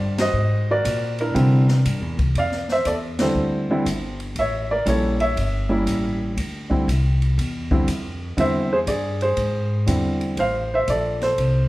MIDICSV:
0, 0, Header, 1, 4, 480
1, 0, Start_track
1, 0, Key_signature, -1, "major"
1, 0, Tempo, 502092
1, 330, Time_signature, 4, 2, 24, 8
1, 11169, End_track
2, 0, Start_track
2, 0, Title_t, "Upright piano"
2, 0, Program_c, 0, 0
2, 0, Note_on_c, 0, 72, 67
2, 0, Note_on_c, 0, 74, 78
2, 0, Note_on_c, 0, 77, 70
2, 142, Note_off_c, 0, 72, 0
2, 142, Note_off_c, 0, 77, 0
2, 185, Note_off_c, 0, 74, 0
2, 190, Note_on_c, 0, 66, 69
2, 192, Note_on_c, 0, 75, 98
2, 193, Note_on_c, 0, 72, 64
2, 662, Note_off_c, 0, 66, 0
2, 675, Note_off_c, 0, 75, 0
2, 676, Note_on_c, 0, 66, 67
2, 682, Note_on_c, 0, 70, 70
2, 682, Note_on_c, 0, 74, 102
2, 1103, Note_off_c, 0, 72, 0
2, 1113, Note_off_c, 0, 74, 0
2, 1140, Note_off_c, 0, 70, 0
2, 1152, Note_on_c, 0, 64, 53
2, 1153, Note_on_c, 0, 62, 56
2, 1154, Note_on_c, 0, 70, 87
2, 1264, Note_off_c, 0, 66, 0
2, 1279, Note_off_c, 0, 64, 0
2, 1284, Note_on_c, 0, 50, 62
2, 1286, Note_on_c, 0, 55, 57
2, 1287, Note_on_c, 0, 60, 61
2, 1293, Note_on_c, 0, 64, 66
2, 1575, Note_off_c, 0, 50, 0
2, 1576, Note_off_c, 0, 55, 0
2, 1576, Note_off_c, 0, 60, 0
2, 1580, Note_off_c, 0, 64, 0
2, 2063, Note_off_c, 0, 62, 0
2, 2063, Note_off_c, 0, 70, 0
2, 2275, Note_on_c, 0, 74, 75
2, 2286, Note_on_c, 0, 77, 100
2, 2560, Note_off_c, 0, 74, 0
2, 2567, Note_off_c, 0, 77, 0
2, 2600, Note_on_c, 0, 76, 94
2, 2601, Note_on_c, 0, 72, 73
2, 2735, Note_off_c, 0, 72, 0
2, 2740, Note_on_c, 0, 74, 85
2, 2748, Note_on_c, 0, 69, 64
2, 2749, Note_off_c, 0, 76, 0
2, 2811, Note_off_c, 0, 74, 0
2, 2818, Note_off_c, 0, 69, 0
2, 3058, Note_on_c, 0, 50, 61
2, 3060, Note_on_c, 0, 60, 50
2, 3061, Note_on_c, 0, 72, 76
2, 3062, Note_on_c, 0, 55, 52
2, 3063, Note_on_c, 0, 64, 62
2, 3068, Note_on_c, 0, 69, 57
2, 3501, Note_off_c, 0, 50, 0
2, 3502, Note_off_c, 0, 60, 0
2, 3503, Note_off_c, 0, 55, 0
2, 3504, Note_off_c, 0, 64, 0
2, 3542, Note_on_c, 0, 50, 71
2, 3543, Note_on_c, 0, 55, 63
2, 3543, Note_on_c, 0, 64, 75
2, 3548, Note_on_c, 0, 60, 65
2, 3679, Note_off_c, 0, 50, 0
2, 3680, Note_off_c, 0, 55, 0
2, 3680, Note_off_c, 0, 64, 0
2, 3682, Note_off_c, 0, 60, 0
2, 3976, Note_off_c, 0, 72, 0
2, 3980, Note_off_c, 0, 69, 0
2, 4195, Note_on_c, 0, 76, 95
2, 4203, Note_on_c, 0, 73, 78
2, 4480, Note_off_c, 0, 76, 0
2, 4485, Note_off_c, 0, 73, 0
2, 4504, Note_on_c, 0, 74, 90
2, 4513, Note_on_c, 0, 70, 69
2, 4642, Note_on_c, 0, 55, 55
2, 4645, Note_off_c, 0, 74, 0
2, 4648, Note_on_c, 0, 58, 47
2, 4649, Note_on_c, 0, 61, 50
2, 4650, Note_off_c, 0, 70, 0
2, 4650, Note_on_c, 0, 64, 62
2, 4664, Note_on_c, 0, 73, 85
2, 4676, Note_on_c, 0, 69, 64
2, 4933, Note_off_c, 0, 55, 0
2, 4936, Note_off_c, 0, 58, 0
2, 4936, Note_off_c, 0, 61, 0
2, 4937, Note_off_c, 0, 64, 0
2, 4954, Note_off_c, 0, 73, 0
2, 4961, Note_off_c, 0, 69, 0
2, 4978, Note_on_c, 0, 76, 102
2, 4989, Note_on_c, 0, 73, 70
2, 5441, Note_on_c, 0, 55, 66
2, 5442, Note_on_c, 0, 58, 60
2, 5447, Note_on_c, 0, 61, 62
2, 5451, Note_on_c, 0, 64, 78
2, 5894, Note_off_c, 0, 76, 0
2, 5900, Note_off_c, 0, 73, 0
2, 6052, Note_off_c, 0, 55, 0
2, 6053, Note_off_c, 0, 58, 0
2, 6055, Note_off_c, 0, 61, 0
2, 6057, Note_off_c, 0, 64, 0
2, 6401, Note_on_c, 0, 50, 60
2, 6406, Note_on_c, 0, 55, 55
2, 6411, Note_on_c, 0, 64, 65
2, 6413, Note_on_c, 0, 60, 54
2, 6548, Note_off_c, 0, 50, 0
2, 6550, Note_off_c, 0, 55, 0
2, 6553, Note_off_c, 0, 64, 0
2, 6554, Note_off_c, 0, 60, 0
2, 7372, Note_on_c, 0, 50, 64
2, 7377, Note_on_c, 0, 60, 60
2, 7380, Note_on_c, 0, 55, 58
2, 7381, Note_on_c, 0, 64, 70
2, 7513, Note_off_c, 0, 50, 0
2, 7516, Note_off_c, 0, 60, 0
2, 7517, Note_off_c, 0, 55, 0
2, 7517, Note_off_c, 0, 64, 0
2, 7999, Note_on_c, 0, 50, 61
2, 8008, Note_on_c, 0, 55, 57
2, 8008, Note_on_c, 0, 60, 56
2, 8012, Note_on_c, 0, 64, 64
2, 8029, Note_on_c, 0, 76, 98
2, 8036, Note_on_c, 0, 72, 78
2, 8291, Note_off_c, 0, 50, 0
2, 8295, Note_off_c, 0, 55, 0
2, 8295, Note_off_c, 0, 60, 0
2, 8297, Note_off_c, 0, 64, 0
2, 8316, Note_off_c, 0, 76, 0
2, 8320, Note_off_c, 0, 72, 0
2, 8342, Note_on_c, 0, 72, 88
2, 8345, Note_on_c, 0, 68, 68
2, 8390, Note_off_c, 0, 72, 0
2, 8393, Note_off_c, 0, 68, 0
2, 8488, Note_on_c, 0, 74, 82
2, 8501, Note_on_c, 0, 68, 62
2, 8792, Note_off_c, 0, 68, 0
2, 8816, Note_on_c, 0, 72, 85
2, 8817, Note_off_c, 0, 74, 0
2, 8834, Note_on_c, 0, 68, 57
2, 9413, Note_off_c, 0, 72, 0
2, 9421, Note_off_c, 0, 68, 0
2, 9430, Note_on_c, 0, 50, 57
2, 9433, Note_on_c, 0, 55, 51
2, 9441, Note_on_c, 0, 60, 54
2, 9443, Note_on_c, 0, 64, 57
2, 9918, Note_off_c, 0, 50, 0
2, 9920, Note_off_c, 0, 55, 0
2, 9924, Note_off_c, 0, 60, 0
2, 9924, Note_off_c, 0, 64, 0
2, 9933, Note_on_c, 0, 72, 74
2, 9942, Note_on_c, 0, 77, 99
2, 10228, Note_off_c, 0, 72, 0
2, 10264, Note_off_c, 0, 77, 0
2, 10267, Note_on_c, 0, 72, 76
2, 10276, Note_on_c, 0, 76, 94
2, 10406, Note_off_c, 0, 72, 0
2, 10411, Note_off_c, 0, 76, 0
2, 10418, Note_on_c, 0, 74, 83
2, 10431, Note_on_c, 0, 69, 60
2, 10717, Note_off_c, 0, 69, 0
2, 10733, Note_on_c, 0, 72, 88
2, 10742, Note_off_c, 0, 74, 0
2, 10745, Note_on_c, 0, 69, 53
2, 11169, Note_off_c, 0, 69, 0
2, 11169, Note_off_c, 0, 72, 0
2, 11169, End_track
3, 0, Start_track
3, 0, Title_t, "Upright bass"
3, 0, Program_c, 1, 32
3, 0, Note_on_c, 1, 43, 93
3, 312, Note_off_c, 1, 43, 0
3, 318, Note_on_c, 1, 44, 82
3, 789, Note_off_c, 1, 44, 0
3, 808, Note_on_c, 1, 46, 97
3, 1274, Note_off_c, 1, 46, 0
3, 1290, Note_on_c, 1, 48, 87
3, 1755, Note_off_c, 1, 48, 0
3, 1774, Note_on_c, 1, 43, 83
3, 1922, Note_off_c, 1, 43, 0
3, 1922, Note_on_c, 1, 40, 54
3, 2071, Note_off_c, 1, 40, 0
3, 2077, Note_on_c, 1, 36, 61
3, 2231, Note_off_c, 1, 36, 0
3, 2246, Note_on_c, 1, 41, 70
3, 2713, Note_off_c, 1, 41, 0
3, 2726, Note_on_c, 1, 40, 86
3, 3193, Note_off_c, 1, 40, 0
3, 3200, Note_on_c, 1, 38, 79
3, 3670, Note_off_c, 1, 38, 0
3, 3684, Note_on_c, 1, 31, 75
3, 4151, Note_off_c, 1, 31, 0
3, 4164, Note_on_c, 1, 33, 70
3, 4631, Note_off_c, 1, 33, 0
3, 4644, Note_on_c, 1, 34, 85
3, 5111, Note_off_c, 1, 34, 0
3, 5128, Note_on_c, 1, 31, 80
3, 5593, Note_off_c, 1, 31, 0
3, 5606, Note_on_c, 1, 33, 81
3, 6072, Note_off_c, 1, 33, 0
3, 6089, Note_on_c, 1, 38, 73
3, 6553, Note_off_c, 1, 38, 0
3, 6576, Note_on_c, 1, 36, 93
3, 7037, Note_off_c, 1, 36, 0
3, 7052, Note_on_c, 1, 40, 88
3, 7515, Note_off_c, 1, 40, 0
3, 7529, Note_on_c, 1, 41, 81
3, 7993, Note_off_c, 1, 41, 0
3, 8002, Note_on_c, 1, 40, 76
3, 8469, Note_off_c, 1, 40, 0
3, 8478, Note_on_c, 1, 43, 81
3, 8947, Note_off_c, 1, 43, 0
3, 8956, Note_on_c, 1, 44, 84
3, 9426, Note_off_c, 1, 44, 0
3, 9439, Note_on_c, 1, 40, 79
3, 9908, Note_off_c, 1, 40, 0
3, 9912, Note_on_c, 1, 33, 74
3, 10385, Note_off_c, 1, 33, 0
3, 10398, Note_on_c, 1, 34, 84
3, 10868, Note_off_c, 1, 34, 0
3, 10877, Note_on_c, 1, 36, 85
3, 11169, Note_off_c, 1, 36, 0
3, 11169, End_track
4, 0, Start_track
4, 0, Title_t, "Drums"
4, 176, Note_on_c, 9, 38, 72
4, 176, Note_on_c, 9, 51, 62
4, 271, Note_off_c, 9, 38, 0
4, 271, Note_off_c, 9, 51, 0
4, 813, Note_on_c, 9, 36, 23
4, 814, Note_on_c, 9, 44, 52
4, 814, Note_on_c, 9, 51, 69
4, 909, Note_off_c, 9, 36, 0
4, 910, Note_off_c, 9, 44, 0
4, 910, Note_off_c, 9, 51, 0
4, 1133, Note_on_c, 9, 51, 43
4, 1229, Note_off_c, 9, 51, 0
4, 1294, Note_on_c, 9, 36, 22
4, 1299, Note_on_c, 9, 51, 60
4, 1389, Note_off_c, 9, 36, 0
4, 1394, Note_off_c, 9, 51, 0
4, 1610, Note_on_c, 9, 38, 47
4, 1706, Note_off_c, 9, 38, 0
4, 1773, Note_on_c, 9, 36, 19
4, 1774, Note_on_c, 9, 44, 59
4, 1774, Note_on_c, 9, 51, 67
4, 1869, Note_off_c, 9, 36, 0
4, 1869, Note_off_c, 9, 44, 0
4, 1869, Note_off_c, 9, 51, 0
4, 2092, Note_on_c, 9, 51, 43
4, 2093, Note_on_c, 9, 36, 54
4, 2188, Note_off_c, 9, 51, 0
4, 2189, Note_off_c, 9, 36, 0
4, 2249, Note_on_c, 9, 51, 55
4, 2251, Note_on_c, 9, 36, 20
4, 2345, Note_off_c, 9, 51, 0
4, 2346, Note_off_c, 9, 36, 0
4, 2408, Note_on_c, 9, 38, 27
4, 2503, Note_off_c, 9, 38, 0
4, 2567, Note_on_c, 9, 38, 35
4, 2662, Note_off_c, 9, 38, 0
4, 2726, Note_on_c, 9, 44, 50
4, 2726, Note_on_c, 9, 51, 60
4, 2730, Note_on_c, 9, 36, 22
4, 2822, Note_off_c, 9, 44, 0
4, 2822, Note_off_c, 9, 51, 0
4, 2826, Note_off_c, 9, 36, 0
4, 3048, Note_on_c, 9, 38, 71
4, 3048, Note_on_c, 9, 51, 59
4, 3143, Note_off_c, 9, 38, 0
4, 3143, Note_off_c, 9, 51, 0
4, 3692, Note_on_c, 9, 36, 21
4, 3693, Note_on_c, 9, 44, 58
4, 3693, Note_on_c, 9, 51, 58
4, 3787, Note_off_c, 9, 36, 0
4, 3788, Note_off_c, 9, 44, 0
4, 3788, Note_off_c, 9, 51, 0
4, 4013, Note_on_c, 9, 51, 40
4, 4109, Note_off_c, 9, 51, 0
4, 4165, Note_on_c, 9, 51, 55
4, 4169, Note_on_c, 9, 36, 27
4, 4261, Note_off_c, 9, 51, 0
4, 4265, Note_off_c, 9, 36, 0
4, 4650, Note_on_c, 9, 44, 51
4, 4650, Note_on_c, 9, 51, 59
4, 4652, Note_on_c, 9, 36, 19
4, 4746, Note_off_c, 9, 44, 0
4, 4746, Note_off_c, 9, 51, 0
4, 4747, Note_off_c, 9, 36, 0
4, 4972, Note_on_c, 9, 51, 39
4, 5068, Note_off_c, 9, 51, 0
4, 5132, Note_on_c, 9, 36, 22
4, 5135, Note_on_c, 9, 51, 56
4, 5228, Note_off_c, 9, 36, 0
4, 5231, Note_off_c, 9, 51, 0
4, 5611, Note_on_c, 9, 44, 55
4, 5611, Note_on_c, 9, 51, 58
4, 5612, Note_on_c, 9, 36, 21
4, 5706, Note_off_c, 9, 44, 0
4, 5706, Note_off_c, 9, 51, 0
4, 5708, Note_off_c, 9, 36, 0
4, 6093, Note_on_c, 9, 36, 21
4, 6095, Note_on_c, 9, 51, 62
4, 6189, Note_off_c, 9, 36, 0
4, 6191, Note_off_c, 9, 51, 0
4, 6415, Note_on_c, 9, 36, 38
4, 6510, Note_off_c, 9, 36, 0
4, 6576, Note_on_c, 9, 36, 23
4, 6586, Note_on_c, 9, 44, 51
4, 6586, Note_on_c, 9, 51, 62
4, 6671, Note_off_c, 9, 36, 0
4, 6682, Note_off_c, 9, 44, 0
4, 6682, Note_off_c, 9, 51, 0
4, 6902, Note_on_c, 9, 51, 38
4, 6997, Note_off_c, 9, 51, 0
4, 7055, Note_on_c, 9, 36, 21
4, 7062, Note_on_c, 9, 51, 61
4, 7150, Note_off_c, 9, 36, 0
4, 7158, Note_off_c, 9, 51, 0
4, 7372, Note_on_c, 9, 36, 60
4, 7468, Note_off_c, 9, 36, 0
4, 7531, Note_on_c, 9, 36, 23
4, 7531, Note_on_c, 9, 44, 48
4, 7531, Note_on_c, 9, 51, 62
4, 7626, Note_off_c, 9, 36, 0
4, 7627, Note_off_c, 9, 44, 0
4, 7627, Note_off_c, 9, 51, 0
4, 8006, Note_on_c, 9, 36, 22
4, 8010, Note_on_c, 9, 51, 54
4, 8101, Note_off_c, 9, 36, 0
4, 8106, Note_off_c, 9, 51, 0
4, 8481, Note_on_c, 9, 44, 56
4, 8481, Note_on_c, 9, 51, 63
4, 8483, Note_on_c, 9, 36, 22
4, 8576, Note_off_c, 9, 44, 0
4, 8576, Note_off_c, 9, 51, 0
4, 8578, Note_off_c, 9, 36, 0
4, 8803, Note_on_c, 9, 51, 40
4, 8899, Note_off_c, 9, 51, 0
4, 8955, Note_on_c, 9, 51, 59
4, 8960, Note_on_c, 9, 36, 21
4, 9051, Note_off_c, 9, 51, 0
4, 9056, Note_off_c, 9, 36, 0
4, 9440, Note_on_c, 9, 44, 53
4, 9440, Note_on_c, 9, 51, 64
4, 9442, Note_on_c, 9, 36, 19
4, 9536, Note_off_c, 9, 44, 0
4, 9536, Note_off_c, 9, 51, 0
4, 9538, Note_off_c, 9, 36, 0
4, 9760, Note_on_c, 9, 51, 39
4, 9856, Note_off_c, 9, 51, 0
4, 9915, Note_on_c, 9, 51, 55
4, 9919, Note_on_c, 9, 36, 18
4, 10011, Note_off_c, 9, 51, 0
4, 10015, Note_off_c, 9, 36, 0
4, 10398, Note_on_c, 9, 44, 54
4, 10398, Note_on_c, 9, 51, 56
4, 10401, Note_on_c, 9, 36, 21
4, 10493, Note_off_c, 9, 44, 0
4, 10493, Note_off_c, 9, 51, 0
4, 10496, Note_off_c, 9, 36, 0
4, 10722, Note_on_c, 9, 38, 32
4, 10722, Note_on_c, 9, 51, 36
4, 10817, Note_off_c, 9, 38, 0
4, 10817, Note_off_c, 9, 51, 0
4, 10879, Note_on_c, 9, 51, 56
4, 10884, Note_on_c, 9, 36, 22
4, 10975, Note_off_c, 9, 51, 0
4, 10979, Note_off_c, 9, 36, 0
4, 11169, End_track
0, 0, End_of_file